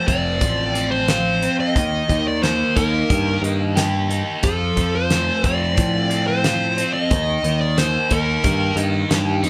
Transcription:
0.00 0.41 F3 medium
0.00 1.42 A3 medium
0.08 0.41 F1 medium
0.08 0.73 C4 medium
0.08 0.91 D5 medium
0.08 kick medium
0.08 closed hi-hat medium
0.41 1.47 A1 medium
0.41 1.74 F3 medium
0.41 kick loud
0.41 closed hi-hat medium
0.74 1.41 C4 medium
0.74 closed hi-hat medium
0.91 1.55 C5 medium
1.08 1.76 F4 medium
1.08 snare loud
1.08 closed hi-hat medium
1.42 1.76 C4 medium
1.42 closed hi-hat medium
1.60 2.27 D#5 loud
1.75 2.02 D#2 medium
1.75 2.07 D#3 medium
1.75 kick medium
1.75 closed hi-hat medium
2.09 2.62 D#2 medium
2.09 3.09 D#3 medium
2.09 kick medium
2.09 closed hi-hat medium
2.28 2.43 D5 medium
2.43 4.10 A#3 medium
2.43 2.77 C5 medium
2.43 snare loud
2.43 closed hi-hat medium
2.76 3.03 D#2 medium
2.76 3.42 D#4 medium
2.76 3.40 A#4 medium
2.76 kick medium
2.76 snare soft
2.76 closed hi-hat medium
3.10 3.36 G2 medium
3.10 4.44 D#3 medium
3.10 kick loud
3.10 closed hi-hat medium
3.42 4.21 G2 medium
3.42 4.08 D#4 medium
3.42 closed hi-hat medium
3.75 4.43 G4 medium
3.75 snare loud
3.75 closed hi-hat medium
4.10 4.43 D#4 medium
4.10 closed hi-hat medium
4.43 4.70 F2 medium
4.43 4.76 F3 medium
4.43 4.95 A4 medium
4.43 kick loud
4.43 closed hi-hat medium
4.77 5.29 F2 medium
4.77 5.76 F3 medium
4.77 kick medium
4.77 closed hi-hat medium
4.95 5.41 C5 medium
5.10 6.78 A3 medium
5.10 snare loud
5.10 closed hi-hat medium
5.43 5.78 F2 medium
5.43 6.09 C4 medium
5.43 6.27 D5 medium
5.43 kick medium
5.43 closed hi-hat medium
5.77 6.83 A2 medium
5.77 7.11 F3 medium
5.77 kick loud
5.77 closed hi-hat medium
6.11 6.76 C4 medium
6.11 closed hi-hat medium
6.28 6.93 C5 medium
6.44 7.11 F4 medium
6.44 snare loud
6.44 closed hi-hat medium
6.78 7.11 C4 medium
6.78 closed hi-hat medium
6.93 7.60 D#5 medium
7.11 7.37 D#2 medium
7.11 7.43 D#3 medium
7.11 kick loud
7.11 closed hi-hat medium
7.44 7.96 D#2 medium
7.44 8.43 D#3 medium
7.44 closed hi-hat medium
7.61 7.78 D5 medium
7.77 9.44 A#3 medium
7.77 8.13 C5 medium
7.77 snare loud
7.77 closed hi-hat medium
8.10 8.37 D#2 medium
8.10 8.76 D#4 medium
8.10 8.75 A#4 medium
8.10 kick medium
8.10 closed hi-hat medium
8.44 8.70 G2 medium
8.44 9.50 D#3 medium
8.44 kick loud
8.44 closed hi-hat medium
8.76 9.03 G2 medium
8.76 9.42 D#4 medium
8.76 closed hi-hat medium
9.10 9.41 G2 medium
9.10 9.50 G4 medium
9.10 snare loud
9.10 closed hi-hat medium
9.44 9.50 F2 medium
9.44 9.50 D#4 medium
9.44 closed hi-hat soft

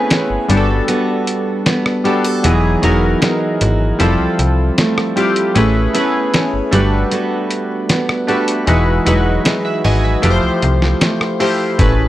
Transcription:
0.00 0.49 A3 medium
0.00 0.51 A3 medium
0.00 0.49 B3 medium
0.00 0.51 C4 medium
0.00 0.53 C#4 medium
0.00 0.51 E4 medium
0.00 0.50 G#4 loud
0.00 0.57 G#4 medium
0.00 0.50 B4 medium
0.00 0.89 B4 medium
0.10 0.57 C#4 medium
0.10 snare loud
0.10 closed hi-hat medium
0.30 0.38 G1 soft
0.48 0.81 G1 loud
0.48 1.73 G3 medium
0.48 2.52 G3 medium
0.48 1.74 B3 medium
0.48 1.74 D4 medium
0.48 1.74 F#4 medium
0.48 0.56 G4 medium
0.48 closed hi-hat medium
0.57 1.78 A4 medium
0.88 1.66 B3 medium
0.88 2.52 F#4 medium
0.88 2.04 A4 medium
0.88 closed hi-hat medium
1.27 closed hi-hat medium
1.66 2.52 B3 medium
1.66 snare loud
1.66 closed hi-hat medium
1.86 cross-stick medium
2.04 2.34 G3 medium
2.04 2.34 B3 medium
2.04 2.35 D4 medium
2.04 2.35 F#4 medium
2.04 2.25 G4 medium
2.04 2.35 A4 medium
2.04 closed hi-hat soft
2.24 2.52 A4 medium
2.24 closed hi-hat medium
2.43 2.76 E1 loud
2.43 4.00 E3 medium
2.43 2.73 F#3 medium
2.43 2.73 B3 medium
2.43 2.74 D#4 medium
2.43 2.74 E4 medium
2.43 2.74 G#4 medium
2.43 closed hi-hat medium
2.82 3.15 E1 loud
2.82 3.99 F#3 medium
2.82 3.21 G#3 medium
2.82 4.00 B3 medium
2.82 4.00 D#4 medium
2.82 4.08 D#4 medium
2.82 3.99 E4 medium
2.82 3.60 F#4 medium
2.82 4.01 A#4 medium
2.82 closed hi-hat medium
3.22 4.08 G#3 medium
3.22 snare loud
3.22 closed hi-hat medium
3.61 3.93 G#1 loud
3.61 4.08 F#4 medium
3.61 closed hi-hat medium
3.99 4.16 F1 loud
3.99 5.64 F3 medium
3.99 4.93 G3 medium
3.99 4.93 C4 medium
3.99 4.93 E4 medium
3.99 4.94 F4 medium
3.99 4.94 A4 medium
3.99 closed hi-hat medium
4.20 4.27 C2 soft
4.39 4.71 C2 medium
4.39 closed hi-hat medium
4.78 5.55 A3 medium
4.78 snare loud
4.78 closed hi-hat medium
4.98 cross-stick loud
5.16 5.46 G3 medium
5.16 5.46 C4 medium
5.16 5.46 E4 medium
5.16 5.47 F4 medium
5.16 5.64 G4 medium
5.16 5.47 G4 medium
5.16 closed hi-hat soft
5.36 closed hi-hat medium
5.55 5.88 A1 loud
5.55 5.85 A3 medium
5.55 6.72 A3 medium
5.55 5.85 C#4 medium
5.55 5.85 E4 medium
5.55 5.85 G#4 medium
5.55 5.86 B4 medium
5.55 closed hi-hat medium
5.93 6.70 A3 medium
5.93 6.01 B3 medium
5.93 6.33 C#4 medium
5.93 6.72 E4 medium
5.93 6.73 G#4 medium
5.93 6.81 G#4 medium
5.93 6.72 B4 medium
5.93 7.13 B4 medium
5.93 closed hi-hat medium
6.00 6.76 C#4 medium
6.34 6.80 C#4 medium
6.34 snare loud
6.34 closed hi-hat medium
6.54 6.61 G1 medium
6.71 7.05 G1 loud
6.71 8.75 G3 medium
6.71 7.97 A3 medium
6.71 7.97 D4 medium
6.71 7.97 F#4 medium
6.71 7.97 G4 medium
6.71 7.98 B4 medium
6.71 closed hi-hat medium
7.11 7.89 B3 medium
7.11 8.76 F#4 medium
7.11 8.28 A4 medium
7.11 closed hi-hat medium
7.50 closed hi-hat medium
7.89 8.75 B3 medium
7.89 snare loud
7.89 closed hi-hat medium
8.09 cross-stick medium
8.27 8.57 A3 medium
8.27 8.58 D4 medium
8.27 8.58 F#4 medium
8.27 8.58 G4 medium
8.27 8.75 A4 medium
8.27 8.58 B4 medium
8.27 closed hi-hat soft
8.48 closed hi-hat medium
8.67 9.00 E1 loud
8.67 10.23 E3 medium
8.67 8.96 G#3 medium
8.67 8.97 D#4 medium
8.67 8.97 E4 medium
8.67 8.97 F#4 medium
8.67 8.97 B4 medium
8.67 closed hi-hat medium
9.05 9.39 E1 loud
9.05 9.12 F#3 medium
9.05 9.44 G#3 medium
9.05 10.23 D#4 medium
9.05 10.31 D#4 medium
9.05 10.21 E4 medium
9.05 10.24 F#4 medium
9.05 9.83 F#4 medium
9.05 9.46 B4 medium
9.05 closed hi-hat medium
9.12 10.26 G#3 medium
9.45 10.31 G#3 medium
9.45 snare loud
9.45 closed hi-hat medium
9.65 9.84 B4 medium
9.65 9.83 E5 medium
9.84 10.17 G#1 loud
9.84 10.31 F#4 medium
9.84 10.03 D#5 medium
9.84 10.03 G#5 medium
9.84 open hi-hat medium
10.04 10.23 B4 medium
10.04 10.41 E5 medium
10.22 10.39 F1 loud
10.22 11.87 F3 medium
10.22 11.16 A3 medium
10.22 11.16 E4 medium
10.22 11.17 F4 medium
10.22 11.17 G4 medium
10.22 10.30 B4 medium
10.22 closed hi-hat medium
10.30 11.20 C5 loud
10.43 10.51 C2 soft
10.62 10.95 C2 medium
10.62 closed hi-hat medium
10.82 snare medium
11.01 11.79 A3 medium
11.01 snare loud
11.01 closed hi-hat medium
11.21 cross-stick loud
11.40 11.69 A3 medium
11.40 11.69 E4 medium
11.40 11.70 F4 medium
11.40 11.87 G4 medium
11.40 11.70 G4 medium
11.40 11.70 C5 medium
11.40 open hi-hat medium
11.78 12.08 A1 loud
11.78 12.08 A3 medium
11.78 12.08 C#4 medium
11.78 12.08 E4 medium
11.78 12.08 G#4 medium
11.78 12.08 B4 loud
11.78 kick loud
11.78 closed hi-hat medium

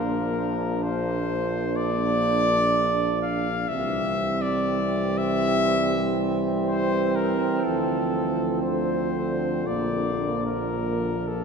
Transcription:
0.00 3.66 A#1 medium
0.00 3.44 F3 medium
0.00 3.44 A#3 medium
0.00 3.54 D4 medium
0.00 0.84 A#4 medium
0.83 1.78 C5 medium
1.76 3.21 D5 loud
3.22 3.70 F5 medium
3.68 7.33 C2 medium
3.68 8.65 E3 medium
3.68 7.60 G3 medium
3.68 9.63 C4 medium
3.68 4.43 E5 loud
4.42 5.19 D5 medium
5.18 6.39 E5 loud
6.66 7.17 C5 loud
7.16 7.65 A#4 medium
7.64 9.68 D2 medium
7.64 11.44 F3 medium
7.64 8.62 A4 medium
8.62 11.44 D3 medium
8.62 9.68 C5 medium
9.66 11.44 A#1 medium
9.66 11.44 A#3 medium
9.66 10.46 D5 medium
10.46 11.29 A#4 medium
11.28 11.44 A4 medium

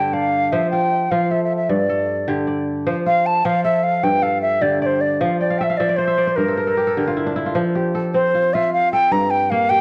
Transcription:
0.00 0.58 G2 medium
0.00 0.58 D3 medium
0.00 0.29 F4 medium
0.00 1.36 G4 medium
0.00 0.87 A4 soft
0.08 0.15 G5 medium
0.13 1.24 D5 medium
0.13 0.53 F5 medium
0.52 1.10 F3 medium
0.52 1.71 C5 medium
0.52 0.70 E5 medium
0.71 1.11 F4 medium
0.71 1.12 G5 medium
1.11 1.75 F3 medium
1.11 2.63 F4 medium
1.11 1.32 F5 medium
1.31 1.89 A4 medium
1.31 1.43 E5 medium
1.44 1.55 E5 medium
1.56 1.71 E5 medium
1.69 2.92 G2 medium
1.69 2.28 D5 medium
1.89 3.21 A4 medium
2.28 2.92 D3 medium
2.28 3.69 G4 medium
2.47 3.58 D5 medium
2.87 3.44 F3 medium
2.87 4.06 C5 medium
3.06 3.45 F4 medium
3.06 3.28 F5 medium
3.26 3.47 A5 medium
3.45 4.09 F3 medium
3.45 4.97 F4 medium
3.45 3.63 F5 medium
3.64 4.22 A4 medium
3.64 3.85 E5 medium
3.83 4.05 F5 medium
4.03 5.26 G2 medium
4.03 4.24 G5 medium
4.23 5.54 A4 medium
4.23 4.41 F5 medium
4.42 4.63 E5 medium
4.61 5.26 D3 medium
4.61 6.03 G4 medium
4.61 4.81 D5 medium
4.82 5.88 D5 medium
4.82 4.87 D5 medium
4.86 5.02 C5 medium
5.01 5.22 D5 medium
5.21 5.79 F3 medium
5.21 5.40 F5 medium
5.40 5.60 D5 medium
5.40 6.34 G5 medium
5.50 5.69 F5 medium
5.58 5.79 E5 medium
5.58 5.64 G5 medium
5.63 5.79 E5 medium
5.70 6.13 F5 medium
5.77 6.43 F3 medium
5.77 5.98 D5 medium
5.77 6.07 E5 medium
5.89 6.17 D5 medium
5.96 6.38 C5 medium
5.96 6.27 C5 medium
6.07 7.14 E5 medium
6.18 7.28 D5 medium
6.27 7.46 C5 medium
6.36 7.61 G2 medium
6.36 7.35 A#4 medium
6.36 6.57 A#4 medium
6.48 6.67 A4 medium
6.57 6.93 A#4 medium
6.67 6.87 A4 medium
6.77 6.97 G4 medium
6.87 7.94 A4 medium
6.97 7.61 D3 medium
6.97 7.75 G4 medium
7.08 7.42 F4 medium
7.17 7.36 E4 medium
7.27 8.95 D4 medium
7.36 7.61 E4 medium
7.46 8.34 F4 medium
7.55 8.78 F3 medium
7.75 9.17 G4 medium
7.95 8.92 A4 medium
8.14 9.81 C4 medium
8.14 8.55 C5 medium
8.34 8.54 F4 medium
8.53 9.81 F4 medium
8.53 8.73 E5 medium
8.74 8.91 F5 medium
8.93 9.57 A4 medium
8.93 9.14 G5 medium
9.11 9.81 G2 medium
9.11 9.32 A#5 medium
9.30 9.52 G5 medium
9.50 9.81 A#3 medium
9.50 9.71 F5 medium
9.69 9.81 G4 medium
9.69 9.81 G5 loud

